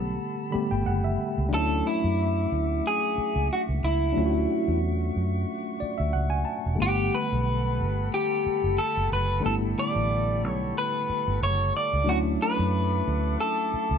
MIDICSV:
0, 0, Header, 1, 6, 480
1, 0, Start_track
1, 0, Tempo, 659341
1, 1101, Time_signature, 4, 2, 24, 8
1, 10178, End_track
2, 0, Start_track
2, 0, Title_t, "Flute section"
2, 0, Program_c, 0, 73
2, 0, Note_on_c, 0, 69, 75
2, 0, Note_on_c, 0, 78, 67
2, 0, Note_on_c, 0, 81, 71
2, 0, Note_on_c, 0, 83, 86
2, 1071, Note_off_c, 0, 81, 0
2, 1072, Note_off_c, 0, 69, 0
2, 1072, Note_off_c, 0, 78, 0
2, 1073, Note_off_c, 0, 83, 0
2, 1099, Note_on_c, 0, 78, 70
2, 1099, Note_on_c, 0, 86, 84
2, 1103, Note_on_c, 0, 76, 76
2, 2823, Note_off_c, 0, 86, 0
2, 3016, Note_on_c, 0, 85, 89
2, 4773, Note_off_c, 0, 76, 0
2, 4919, Note_off_c, 0, 85, 0
2, 4938, Note_on_c, 0, 67, 73
2, 4940, Note_on_c, 0, 83, 89
2, 4943, Note_on_c, 0, 69, 80
2, 8604, Note_off_c, 0, 83, 0
2, 8750, Note_off_c, 0, 67, 0
2, 8753, Note_off_c, 0, 69, 0
2, 8771, Note_on_c, 0, 86, 89
2, 8772, Note_on_c, 0, 76, 73
2, 8774, Note_on_c, 0, 69, 86
2, 10178, Note_off_c, 0, 69, 0
2, 10178, Note_off_c, 0, 76, 0
2, 10178, Note_off_c, 0, 78, 0
2, 10178, Note_off_c, 0, 86, 0
2, 10178, End_track
3, 0, Start_track
3, 0, Title_t, "Clean electric guitar"
3, 0, Program_c, 1, 27
3, 1122, Note_on_c, 1, 69, 123
3, 1359, Note_off_c, 1, 69, 0
3, 1360, Note_on_c, 1, 64, 91
3, 2091, Note_on_c, 1, 68, 100
3, 2092, Note_off_c, 1, 64, 0
3, 2527, Note_off_c, 1, 68, 0
3, 2568, Note_on_c, 1, 66, 85
3, 2629, Note_off_c, 1, 66, 0
3, 2799, Note_on_c, 1, 64, 77
3, 3481, Note_off_c, 1, 64, 0
3, 4964, Note_on_c, 1, 67, 100
3, 5200, Note_off_c, 1, 67, 0
3, 5202, Note_on_c, 1, 71, 93
3, 5882, Note_off_c, 1, 71, 0
3, 5926, Note_on_c, 1, 67, 84
3, 6395, Note_on_c, 1, 69, 97
3, 6407, Note_off_c, 1, 67, 0
3, 6635, Note_off_c, 1, 69, 0
3, 6648, Note_on_c, 1, 71, 105
3, 6881, Note_off_c, 1, 71, 0
3, 6886, Note_on_c, 1, 69, 102
3, 6947, Note_off_c, 1, 69, 0
3, 7130, Note_on_c, 1, 74, 109
3, 7618, Note_off_c, 1, 74, 0
3, 7618, Note_on_c, 1, 73, 109
3, 7846, Note_off_c, 1, 73, 0
3, 7849, Note_on_c, 1, 71, 99
3, 8321, Note_off_c, 1, 71, 0
3, 8324, Note_on_c, 1, 73, 101
3, 8560, Note_off_c, 1, 73, 0
3, 8566, Note_on_c, 1, 74, 99
3, 8800, Note_off_c, 1, 74, 0
3, 8800, Note_on_c, 1, 66, 102
3, 8863, Note_off_c, 1, 66, 0
3, 9045, Note_on_c, 1, 71, 99
3, 9756, Note_off_c, 1, 71, 0
3, 9759, Note_on_c, 1, 69, 79
3, 10178, Note_off_c, 1, 69, 0
3, 10178, End_track
4, 0, Start_track
4, 0, Title_t, "Tine electric piano"
4, 0, Program_c, 2, 4
4, 0, Control_c, 2, 64, 127
4, 0, Note_on_c, 2, 50, 67
4, 0, Note_on_c, 2, 55, 59
4, 0, Note_on_c, 2, 57, 62
4, 0, Note_on_c, 2, 59, 62
4, 0, Note_on_c, 2, 67, 77
4, 349, Note_off_c, 2, 50, 0
4, 354, Note_off_c, 2, 55, 0
4, 361, Note_off_c, 2, 57, 0
4, 366, Note_off_c, 2, 59, 0
4, 369, Note_on_c, 2, 50, 53
4, 373, Note_off_c, 2, 67, 0
4, 377, Note_on_c, 2, 55, 52
4, 381, Note_on_c, 2, 83, 68
4, 382, Note_on_c, 2, 57, 51
4, 390, Note_on_c, 2, 59, 51
4, 393, Note_on_c, 2, 67, 60
4, 502, Note_off_c, 2, 83, 0
4, 518, Note_on_c, 2, 79, 73
4, 617, Note_off_c, 2, 79, 0
4, 628, Note_on_c, 2, 78, 72
4, 745, Note_off_c, 2, 78, 0
4, 759, Note_on_c, 2, 76, 68
4, 1081, Note_off_c, 2, 76, 0
4, 1084, Note_on_c, 2, 62, 64
4, 1095, Note_off_c, 2, 50, 0
4, 1098, Note_off_c, 2, 57, 0
4, 1099, Note_off_c, 2, 55, 0
4, 1099, Note_on_c, 2, 54, 62
4, 1105, Note_off_c, 2, 59, 0
4, 1107, Note_off_c, 2, 67, 0
4, 1107, Note_on_c, 2, 57, 60
4, 1110, Control_c, 2, 64, 0
4, 1122, Note_on_c, 2, 61, 62
4, 1133, Note_on_c, 2, 63, 57
4, 1168, Note_off_c, 2, 63, 0
4, 1180, Note_on_c, 2, 64, 77
4, 1234, Control_c, 2, 64, 127
4, 2983, Note_off_c, 2, 62, 0
4, 2991, Note_off_c, 2, 54, 0
4, 2995, Note_off_c, 2, 57, 0
4, 3002, Note_off_c, 2, 61, 0
4, 3005, Note_on_c, 2, 62, 63
4, 3015, Note_on_c, 2, 54, 56
4, 3029, Note_on_c, 2, 57, 59
4, 3031, Note_off_c, 2, 64, 0
4, 3042, Note_on_c, 2, 61, 60
4, 3051, Note_on_c, 2, 65, 55
4, 3087, Note_off_c, 2, 65, 0
4, 3100, Note_on_c, 2, 66, 70
4, 4224, Note_on_c, 2, 74, 69
4, 4343, Note_off_c, 2, 74, 0
4, 4351, Note_on_c, 2, 76, 69
4, 4454, Note_off_c, 2, 76, 0
4, 4463, Note_on_c, 2, 78, 77
4, 4583, Note_off_c, 2, 78, 0
4, 4586, Note_on_c, 2, 80, 68
4, 4691, Note_off_c, 2, 80, 0
4, 4695, Note_on_c, 2, 81, 63
4, 4904, Note_off_c, 2, 62, 0
4, 4909, Note_off_c, 2, 54, 0
4, 4916, Note_off_c, 2, 57, 0
4, 4916, Note_on_c, 2, 50, 63
4, 4921, Note_off_c, 2, 81, 0
4, 4922, Note_off_c, 2, 61, 0
4, 4925, Note_on_c, 2, 55, 57
4, 4941, Note_on_c, 2, 57, 60
4, 4951, Note_off_c, 2, 66, 0
4, 4952, Control_c, 2, 64, 0
4, 4954, Note_on_c, 2, 59, 55
4, 4963, Note_on_c, 2, 64, 53
4, 5003, Note_off_c, 2, 64, 0
4, 5010, Note_on_c, 2, 78, 73
4, 5069, Control_c, 2, 64, 127
4, 6819, Note_off_c, 2, 50, 0
4, 6824, Note_off_c, 2, 55, 0
4, 6832, Note_off_c, 2, 57, 0
4, 6838, Note_off_c, 2, 59, 0
4, 6846, Note_on_c, 2, 50, 67
4, 6856, Note_on_c, 2, 55, 64
4, 6867, Note_off_c, 2, 78, 0
4, 6870, Note_on_c, 2, 57, 61
4, 6882, Note_on_c, 2, 59, 63
4, 6896, Note_on_c, 2, 64, 75
4, 8744, Note_off_c, 2, 50, 0
4, 8749, Note_off_c, 2, 55, 0
4, 8756, Note_off_c, 2, 57, 0
4, 8762, Note_off_c, 2, 59, 0
4, 8767, Note_on_c, 2, 62, 65
4, 8770, Note_off_c, 2, 64, 0
4, 8776, Note_on_c, 2, 54, 63
4, 8789, Note_on_c, 2, 57, 61
4, 8790, Control_c, 2, 64, 0
4, 8800, Note_on_c, 2, 61, 61
4, 8813, Note_on_c, 2, 64, 77
4, 8914, Control_c, 2, 64, 127
4, 10178, Note_off_c, 2, 54, 0
4, 10178, Note_off_c, 2, 57, 0
4, 10178, Note_off_c, 2, 61, 0
4, 10178, Note_off_c, 2, 62, 0
4, 10178, Note_off_c, 2, 64, 0
4, 10178, End_track
5, 0, Start_track
5, 0, Title_t, "Fingered electric bass"
5, 0, Program_c, 3, 33
5, 0, Note_on_c, 3, 35, 99
5, 122, Note_off_c, 3, 35, 0
5, 522, Note_on_c, 3, 31, 89
5, 614, Note_off_c, 3, 31, 0
5, 635, Note_on_c, 3, 30, 103
5, 839, Note_off_c, 3, 30, 0
5, 1003, Note_on_c, 3, 37, 89
5, 1095, Note_off_c, 3, 37, 0
5, 1111, Note_on_c, 3, 38, 97
5, 1317, Note_off_c, 3, 38, 0
5, 1486, Note_on_c, 3, 42, 97
5, 1786, Note_off_c, 3, 42, 0
5, 1835, Note_on_c, 3, 38, 92
5, 2039, Note_off_c, 3, 38, 0
5, 2444, Note_on_c, 3, 37, 85
5, 2535, Note_off_c, 3, 37, 0
5, 2686, Note_on_c, 3, 37, 88
5, 2776, Note_off_c, 3, 37, 0
5, 2792, Note_on_c, 3, 37, 93
5, 2997, Note_off_c, 3, 37, 0
5, 3038, Note_on_c, 3, 38, 103
5, 3241, Note_off_c, 3, 38, 0
5, 3407, Note_on_c, 3, 40, 89
5, 3707, Note_off_c, 3, 40, 0
5, 3759, Note_on_c, 3, 42, 94
5, 3962, Note_off_c, 3, 42, 0
5, 4367, Note_on_c, 3, 38, 92
5, 4456, Note_off_c, 3, 38, 0
5, 4477, Note_on_c, 3, 37, 96
5, 4680, Note_off_c, 3, 37, 0
5, 4849, Note_on_c, 3, 28, 86
5, 4938, Note_off_c, 3, 28, 0
5, 4959, Note_on_c, 3, 31, 97
5, 5161, Note_off_c, 3, 31, 0
5, 5332, Note_on_c, 3, 35, 88
5, 5682, Note_on_c, 3, 31, 95
5, 5693, Note_off_c, 3, 35, 0
5, 5883, Note_off_c, 3, 31, 0
5, 6289, Note_on_c, 3, 30, 88
5, 6377, Note_off_c, 3, 30, 0
5, 6532, Note_on_c, 3, 30, 91
5, 6619, Note_off_c, 3, 30, 0
5, 6642, Note_on_c, 3, 30, 94
5, 6843, Note_off_c, 3, 30, 0
5, 6883, Note_on_c, 3, 31, 100
5, 7084, Note_off_c, 3, 31, 0
5, 7250, Note_on_c, 3, 33, 87
5, 7602, Note_off_c, 3, 33, 0
5, 7602, Note_on_c, 3, 35, 93
5, 7803, Note_off_c, 3, 35, 0
5, 8209, Note_on_c, 3, 31, 90
5, 8298, Note_off_c, 3, 31, 0
5, 8319, Note_on_c, 3, 30, 101
5, 8521, Note_off_c, 3, 30, 0
5, 8687, Note_on_c, 3, 37, 98
5, 8800, Note_off_c, 3, 37, 0
5, 8800, Note_on_c, 3, 38, 99
5, 9002, Note_off_c, 3, 38, 0
5, 9168, Note_on_c, 3, 42, 99
5, 9467, Note_off_c, 3, 42, 0
5, 9519, Note_on_c, 3, 38, 100
5, 9721, Note_off_c, 3, 38, 0
5, 10125, Note_on_c, 3, 37, 91
5, 10178, Note_off_c, 3, 37, 0
5, 10178, End_track
6, 0, Start_track
6, 0, Title_t, "Muted fingered electric bass strokes"
6, 399, Note_on_c, 9, 29, 43
6, 472, Note_off_c, 9, 29, 0
6, 2314, Note_on_c, 9, 29, 43
6, 2387, Note_off_c, 9, 29, 0
6, 4238, Note_on_c, 9, 29, 45
6, 4311, Note_off_c, 9, 29, 0
6, 6161, Note_on_c, 9, 29, 47
6, 6234, Note_off_c, 9, 29, 0
6, 8078, Note_on_c, 9, 29, 49
6, 8150, Note_off_c, 9, 29, 0
6, 10001, Note_on_c, 9, 29, 48
6, 10074, Note_off_c, 9, 29, 0
6, 10178, End_track
0, 0, End_of_file